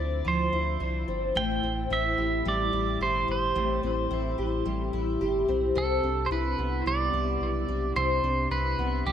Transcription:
0.00 0.22 D2 loud
0.00 1.35 D3 medium
0.00 0.23 F3 medium
0.00 1.07 C4 medium
0.00 0.79 D4 medium
0.00 0.52 E4 medium
0.00 0.30 D5 loud
0.25 0.50 D2 medium
0.25 1.41 F3 medium
0.25 1.05 C5 medium
0.53 0.77 D2 medium
0.53 1.90 E4 medium
0.80 1.05 C2 medium
0.80 1.41 D4 medium
1.08 1.32 G1 medium
1.08 1.63 C4 medium
1.35 1.60 A1 loud
1.35 3.54 A2 medium
1.35 1.92 G5 loud
1.63 1.87 A1 medium
1.63 3.28 C4 medium
1.90 2.15 A1 loud
1.90 2.73 E4 medium
1.90 2.48 E5 loud
2.18 2.42 A1 loud
2.18 3.00 G4 medium
2.45 2.70 A1 loud
2.45 4.65 G3 medium
2.45 3.04 D5 medium
2.73 2.97 A1 loud
2.73 4.10 E4 medium
3.00 3.25 G1 loud
3.00 4.38 G4 medium
3.00 3.27 C5 medium
3.28 3.53 G1 loud
3.28 3.83 C4 medium
3.28 3.81 C5 medium
3.55 3.80 A1 loud
3.55 5.76 A2 medium
3.83 4.07 A1 loud
3.83 5.48 C4 medium
4.11 4.35 A1 loud
4.11 4.93 E4 medium
4.38 4.63 A1 loud
4.38 5.21 G4 medium
4.65 4.90 A1 loud
4.65 6.85 G3 medium
4.93 5.18 A1 loud
4.93 6.06 E4 medium
5.21 5.45 G1 medium
5.21 6.58 G4 medium
5.48 5.73 B1 loud
5.48 6.03 C4 medium
5.75 6.00 C2 loud
5.75 7.95 C3 medium
5.75 6.26 A4 loud
6.03 6.28 C2 medium
6.03 7.68 D4 medium
6.26 6.32 C5 medium
6.30 6.55 C2 loud
6.30 7.12 E4 medium
6.30 6.87 B4 loud
6.58 6.83 C2 loud
6.58 7.99 B3 medium
6.86 7.10 C2 loud
6.86 9.06 G3 medium
6.86 7.96 D5 loud
7.13 7.38 C2 loud
7.13 8.50 E4 medium
7.41 7.65 B1 medium
7.68 7.93 B1 medium
7.68 8.23 D4 medium
7.96 8.20 C2 loud
7.96 9.12 C3 medium
7.96 8.51 C5 medium
8.23 8.48 C2 medium
8.23 9.12 D4 medium
8.51 8.75 C2 loud
8.51 9.12 E4 medium
8.51 9.08 B4 medium
8.79 9.03 C2 loud
8.79 9.12 B3 medium
9.06 9.12 C2 loud
9.06 9.12 G3 medium
9.06 9.12 G4 medium

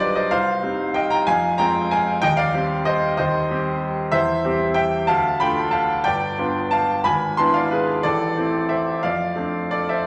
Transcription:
0.00 0.34 B1 medium
0.00 0.28 G3 soft
0.00 0.28 D4 soft
0.00 0.28 F4 medium
0.00 0.34 B4 medium
0.00 0.17 C5 medium
0.00 0.34 D5 medium
0.00 0.15 D#5 medium
0.15 0.30 C5 medium
0.15 0.31 D#5 medium
0.31 0.62 C2 medium
0.31 0.91 C5 medium
0.31 0.95 F5 loud
0.63 1.22 G3 soft
0.63 1.23 C4 soft
0.63 1.23 D#4 soft
0.94 1.10 D#5 medium
0.94 1.10 G5 medium
1.10 1.26 G5 medium
1.10 1.26 A#5 medium
1.27 1.58 F2 medium
1.27 1.57 F5 medium
1.27 1.59 G#5 loud
1.58 2.19 G#3 soft
1.58 2.19 C4 soft
1.58 2.19 F4 medium
1.58 1.89 G5 medium
1.58 1.91 A#5 loud
1.91 2.21 F5 medium
1.91 2.23 G#5 medium
2.22 2.53 D#2 medium
2.22 2.37 D#5 medium
2.22 2.37 G5 loud
2.37 2.83 D5 medium
2.37 2.85 F5 loud
2.53 3.14 G3 soft
2.53 3.14 C4 soft
2.53 3.14 G4 medium
2.85 3.16 C5 medium
2.85 3.16 D#5 medium
3.17 3.50 D#2 medium
3.17 3.79 C5 medium
3.17 3.82 D#5 medium
3.50 4.10 G3 soft
3.50 4.10 C4 soft
3.50 4.10 G4 medium
4.12 4.43 E2 medium
4.12 4.72 C5 medium
4.12 4.74 E5 loud
4.44 5.04 G3 soft
4.44 5.04 C4 medium
4.44 5.05 G4 medium
4.74 5.06 E5 medium
4.74 5.07 G5 medium
5.07 5.39 D2 medium
5.07 5.38 F5 medium
5.07 5.39 A5 loud
5.40 6.02 A3 soft
5.40 6.03 D4 soft
5.40 6.03 F4 medium
5.40 5.71 G5 medium
5.40 5.73 B5 medium
5.71 6.03 F5 medium
5.71 6.05 A5 medium
6.04 6.37 G1 medium
6.04 6.67 D5 medium
6.04 6.70 G5 loud
6.38 7.01 B3 soft
6.38 7.01 D4 soft
6.38 7.01 F4 soft
6.71 7.03 F5 medium
6.71 7.04 A5 loud
7.04 7.36 G#1 medium
7.04 7.35 G#5 medium
7.04 7.37 B5 loud
7.37 8.00 B3 soft
7.37 8.01 D4 soft
7.37 8.01 E4 medium
7.37 7.54 A5 medium
7.37 7.54 C6 medium
7.54 7.70 D5 medium
7.54 7.71 F5 medium
7.71 8.02 G#4 medium
7.71 8.04 B4 medium
8.03 8.36 A1 medium
8.03 8.67 A4 medium
8.03 8.71 D5 medium
8.36 9.00 A3 soft
8.36 9.00 C4 soft
8.36 9.01 E4 soft
8.69 9.01 C5 soft
8.69 9.03 E5 medium
9.03 9.36 F2 soft
9.03 9.68 D5 medium
9.03 9.71 F5 medium
9.36 10.05 A3 soft
9.36 10.05 C4 soft
9.36 10.06 D4 soft
9.71 9.89 A4 medium
9.71 9.90 D5 medium
9.89 10.07 C5 soft
9.89 10.07 E5 medium

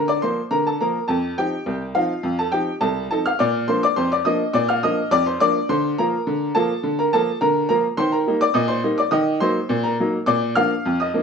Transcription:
0.00 0.18 D3 medium
0.08 0.22 D5 medium
0.08 0.22 D6 medium
0.22 0.38 F3 medium
0.22 0.39 A#3 medium
0.22 0.49 C5 medium
0.22 0.45 C6 medium
0.51 0.75 D3 medium
0.51 0.65 A#4 medium
0.51 0.65 A#5 loud
0.67 0.80 A4 medium
0.67 0.80 A5 medium
0.81 0.96 F3 medium
0.81 0.97 A#3 medium
0.81 1.07 A#4 medium
0.81 1.03 A#5 medium
1.08 1.33 F2 medium
1.08 1.36 A4 medium
1.08 1.35 A5 medium
1.38 1.54 F3 medium
1.38 1.54 C4 medium
1.38 1.54 D#4 medium
1.38 1.91 G4 medium
1.38 1.84 G5 medium
1.66 1.91 C2 medium
1.95 2.11 F3 medium
1.95 2.11 C4 soft
1.95 2.11 D#4 medium
1.95 2.36 F4 medium
1.95 2.36 F5 medium
2.23 2.48 F2 medium
2.39 2.52 A4 medium
2.39 2.53 A5 medium
2.52 2.68 F3 medium
2.52 2.69 C4 medium
2.52 2.69 D#4 medium
2.52 2.79 G4 medium
2.52 2.75 G5 medium
2.81 3.05 C2 medium
2.81 3.08 A4 medium
2.81 3.04 A5 medium
3.11 3.27 F3 soft
3.11 3.27 C4 medium
3.11 3.27 D#4 medium
3.11 3.25 A4 medium
3.11 3.25 A5 medium
3.26 3.39 F5 medium
3.26 3.39 F6 medium
3.39 3.64 A#2 medium
3.39 3.66 D5 medium
3.39 3.62 D6 medium
3.68 3.84 F3 medium
3.68 3.84 A#3 medium
3.68 3.84 D4 medium
3.68 3.82 C5 medium
3.68 3.82 C6 medium
3.83 3.96 D5 medium
3.83 3.97 D6 loud
3.96 4.21 F2 medium
3.96 4.10 C5 medium
3.96 4.10 C6 loud
4.12 4.25 D5 medium
4.12 4.25 D6 medium
4.25 4.41 F3 medium
4.25 4.41 A#3 medium
4.25 4.41 D4 medium
4.25 4.52 D#5 medium
4.25 4.52 D#6 loud
4.53 4.78 A#2 medium
4.53 4.68 D5 medium
4.53 4.68 D6 medium
4.69 4.82 F5 medium
4.69 4.82 F6 medium
4.83 4.99 F3 medium
4.83 4.99 A#3 medium
4.83 5.00 D4 medium
4.83 5.10 D#5 medium
4.83 5.06 D#6 loud
5.11 5.35 F2 medium
5.11 5.25 D5 medium
5.11 5.25 D6 loud
5.26 5.40 C5 medium
5.26 5.40 C6 medium
5.40 5.56 F3 medium
5.40 5.56 A#3 medium
5.40 5.57 D4 medium
5.40 5.67 D5 medium
5.40 5.67 D6 loud
5.69 5.93 D3 loud
5.69 5.96 C5 medium
5.69 5.96 C6 loud
5.98 6.14 F3 medium
5.98 6.14 A#3 medium
5.98 6.15 F4 medium
5.98 6.52 A#4 medium
5.98 6.52 A#5 loud
6.27 6.51 D3 loud
6.55 6.71 F3 medium
6.55 6.71 A#3 medium
6.55 6.71 F4 medium
6.55 6.95 A4 medium
6.55 6.95 A5 loud
6.83 7.08 D3 medium
6.99 7.12 A#4 medium
6.99 7.12 A#5 medium
7.13 7.29 F3 medium
7.13 7.29 A#3 medium
7.13 7.29 F4 medium
7.13 7.40 A4 medium
7.13 7.35 A5 loud
7.41 7.65 D3 medium
7.41 7.68 A#4 medium
7.41 7.67 A#5 loud
7.69 7.85 F3 medium
7.69 7.86 A#3 medium
7.69 7.86 F4 medium
7.69 7.83 A#4 medium
7.69 7.83 A#5 loud
7.97 8.22 D#3 medium
7.97 8.12 C5 medium
7.97 8.12 C6 loud
8.12 8.39 A#4 medium
8.12 8.35 A#5 medium
8.27 8.42 G3 medium
8.27 8.43 A#3 medium
8.27 8.43 D#4 medium
8.41 8.55 D5 medium
8.41 8.55 D6 loud
8.54 8.79 A#2 loud
8.54 8.68 D#5 medium
8.54 8.69 D#6 loud
8.68 8.96 C5 medium
8.68 8.91 C6 loud
8.84 8.99 G3 medium
8.84 9.00 A#3 medium
8.84 9.00 D#4 medium
8.98 9.12 D5 medium
8.98 9.12 D6 medium
9.11 9.36 D#3 loud
9.11 9.39 D#5 medium
9.11 9.39 D#6 loud
9.40 9.57 F#3 medium
9.40 9.57 A#3 medium
9.40 9.57 D#4 medium
9.40 9.81 C5 medium
9.40 9.75 C6 loud
9.69 9.94 A#2 loud
9.83 10.24 A#4 medium
9.83 10.18 A#5 medium
10.00 10.15 F#3 medium
10.00 10.15 A#3 medium
10.00 10.16 D#4 medium
10.26 10.51 A#2 medium
10.26 10.54 D5 medium
10.26 10.54 D6 loud
10.55 10.72 F3 medium
10.55 10.72 A#3 medium
10.55 10.72 D4 medium
10.55 10.96 F5 medium
10.55 10.97 F6 loud
10.85 11.09 F2 medium
11.00 11.23 D#5 medium
11.00 11.23 D#6 medium
11.14 11.23 F3 medium
11.14 11.23 A#3 medium
11.14 11.23 D4 medium

